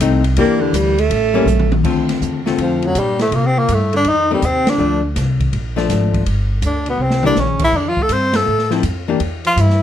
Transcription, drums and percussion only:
0.00 hi-hat pedal, ride
0.24 ride
0.37 kick, ride
0.74 kick, hi-hat pedal, ride
0.98 ride
1.10 kick, ride
1.47 hi-hat pedal, high tom
1.59 mid tom
1.72 mid tom
1.84 kick, crash
2.09 snare, ride
2.21 kick, hi-hat pedal
2.46 snare
2.58 kick, ride
2.82 ride
2.95 kick, hi-hat pedal, ride
3.19 snare, ride
3.32 kick, ride
3.69 kick, hi-hat pedal, ride
3.93 ride
4.04 kick, ride
4.42 kick, hi-hat pedal, ride
4.67 snare, ride
5.16 kick, snare, hi-hat pedal, ride
5.40 kick, ride
5.53 kick, ride
5.77 snare
5.89 kick, snare, hi-hat pedal, ride
6.14 kick, ride
6.26 kick, ride
6.62 kick, hi-hat pedal, ride
6.86 ride
7.10 snare
7.23 mid tom
7.36 snare, hi-hat pedal
7.59 kick, crash
7.73 kick
7.97 kick
8.09 kick, hi-hat pedal, ride
8.33 snare, ride
8.59 snare
8.71 snare
8.83 kick, hi-hat pedal, ride
9.20 kick, ride
9.45 ride
9.57 kick, hi-hat pedal, ride
9.70 snare

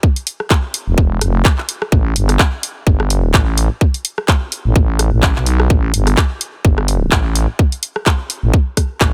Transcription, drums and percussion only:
0.03 kick
0.16 open hi-hat
0.27 open hi-hat
0.40 cross-stick
0.50 kick, clap
0.74 open hi-hat
0.98 kick
1.21 cross-stick, open hi-hat
1.45 kick, clap
1.58 clap
1.69 open hi-hat
1.82 cross-stick
1.92 kick
2.16 open hi-hat
2.29 cross-stick, open hi-hat
2.39 kick, clap
2.63 open hi-hat
2.87 kick
3.00 cross-stick
3.10 open hi-hat
3.34 kick, clap
3.58 open hi-hat
3.81 kick
3.94 open hi-hat
4.05 open hi-hat
4.18 cross-stick
4.28 kick, clap
4.52 open hi-hat
4.76 kick
4.99 cross-stick, open hi-hat
5.23 kick, clap
5.36 clap
5.46 open hi-hat
5.60 cross-stick
5.70 kick
5.94 open hi-hat
6.07 cross-stick, open hi-hat
6.17 kick, clap
6.41 open hi-hat
6.65 kick
6.78 cross-stick
6.88 open hi-hat
7.12 kick, clap
7.35 open hi-hat
7.59 kick
7.72 open hi-hat
7.83 open hi-hat
7.96 cross-stick
8.06 kick, clap
8.30 open hi-hat
8.54 kick
8.77 kick, cross-stick, open hi-hat
9.01 kick, clap

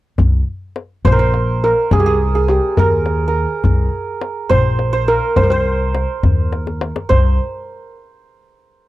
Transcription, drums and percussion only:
0.18 tombak dum
0.76 tombak tek
1.05 tombak dum
1.34 tombak tek
1.91 tombak dum
2.48 tombak tek
2.77 tombak dum
3.06 tombak tek
3.64 tombak dum
4.22 tombak tek
4.50 tombak dum
4.79 tombak tek
5.36 tombak dum
5.66 tombak ka
5.95 tombak tek
6.23 tombak dum
6.53 tombak tek
6.67 tombak ka
6.81 tombak tek
6.96 tombak ka
7.10 tombak dum

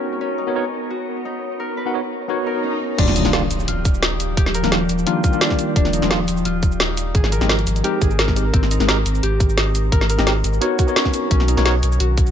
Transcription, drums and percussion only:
2.99 kick, closed hi-hat, crash
3.08 snare
3.16 closed hi-hat, shaker
3.25 snare, shaker
3.33 snare, closed hi-hat
3.51 closed hi-hat, shaker
3.60 shaker
3.68 closed hi-hat
3.85 kick, closed hi-hat, shaker
3.94 shaker
4.03 snare, closed hi-hat
4.20 closed hi-hat, shaker
4.37 kick, closed hi-hat
4.46 snare
4.55 closed hi-hat, shaker
4.64 snare, shaker
4.72 snare, closed hi-hat
4.89 closed hi-hat, shaker
4.98 shaker
5.07 closed hi-hat
5.24 kick, closed hi-hat, shaker
5.33 shaker
5.41 snare, closed hi-hat
5.50 kick, snare
5.59 closed hi-hat, shaker
5.76 kick, closed hi-hat
5.85 snare
5.93 closed hi-hat, shaker
6.02 snare, shaker
6.11 snare, closed hi-hat
6.28 closed hi-hat, shaker
6.37 shaker
6.45 closed hi-hat
6.63 kick, closed hi-hat, shaker
6.72 shaker
6.80 snare, closed hi-hat
6.97 closed hi-hat, shaker
7.15 kick, closed hi-hat
7.24 snare
7.32 closed hi-hat, shaker
7.41 snare, shaker
7.49 snare, closed hi-hat
7.59 closed hi-hat
7.67 closed hi-hat, shaker
7.76 closed hi-hat, shaker
7.84 closed hi-hat
8.02 kick, closed hi-hat, shaker
8.11 shaker
8.19 snare, closed hi-hat
8.28 kick, snare
8.36 closed hi-hat, shaker
8.54 kick, closed hi-hat
8.63 snare
8.71 closed hi-hat, shaker
8.80 snare, shaker
8.89 snare, closed hi-hat
9.06 closed hi-hat, shaker
9.15 shaker
9.23 closed hi-hat
9.40 kick, closed hi-hat, shaker
9.49 shaker
9.58 snare, closed hi-hat
9.75 closed hi-hat, shaker
9.92 kick, closed hi-hat
10.01 snare
10.10 closed hi-hat, shaker
10.19 snare, shaker
10.27 snare, closed hi-hat
10.44 closed hi-hat, shaker
10.53 shaker
10.62 closed hi-hat
10.79 kick, closed hi-hat, shaker
10.88 shaker
10.96 snare, closed hi-hat
11.05 kick, snare
11.14 closed hi-hat, shaker
11.31 kick, closed hi-hat
11.40 snare
11.48 closed hi-hat, shaker
11.57 snare, shaker
11.66 snare, closed hi-hat
11.83 closed hi-hat, shaker
11.92 shaker
12.00 closed hi-hat
12.18 kick, closed hi-hat, shaker
12.27 shaker

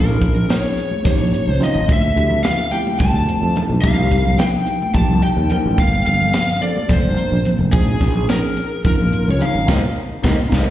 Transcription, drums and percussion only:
0.22 kick, closed hi-hat
0.36 low conga
0.50 snare, closed hi-hat
0.64 low conga
0.77 closed hi-hat
0.91 high conga
1.05 kick, snare, closed hi-hat, low conga
1.33 closed hi-hat, low conga
1.47 low conga
1.61 snare, closed hi-hat, low conga
1.88 kick, closed hi-hat, high conga
2.17 closed hi-hat, low conga
2.30 low conga
2.44 snare, closed hi-hat
2.59 low conga
2.72 closed hi-hat
2.87 high conga
3.00 kick, closed hi-hat, low conga
3.15 low conga
3.29 closed hi-hat
3.56 closed hi-hat, low conga
3.84 kick, closed hi-hat, high conga, low conga
4.12 kick, closed hi-hat
4.25 low conga
4.39 snare, closed hi-hat
4.54 low conga
4.67 closed hi-hat
4.82 high conga
4.95 kick, closed hi-hat, low conga
5.22 closed hi-hat, low conga
5.38 low conga
5.50 closed hi-hat, low conga
5.78 kick, closed hi-hat, high conga, low conga
6.06 closed hi-hat
6.21 low conga
6.34 snare, closed hi-hat
6.49 low conga
6.61 closed hi-hat
6.77 high conga
6.89 kick, snare, closed hi-hat, low conga
7.18 closed hi-hat, low conga
7.33 low conga
7.45 closed hi-hat, low conga
7.73 kick, closed hi-hat, high conga, low conga
8.01 kick, snare, closed hi-hat
8.16 low conga
8.29 snare, closed hi-hat
8.44 low conga
8.57 closed hi-hat
8.85 kick, closed hi-hat, low conga
9.13 closed hi-hat, low conga
9.28 low conga
9.40 closed hi-hat, low conga
9.68 kick, snare, high conga
10.24 kick, snare, high conga
10.52 kick, snare, high conga

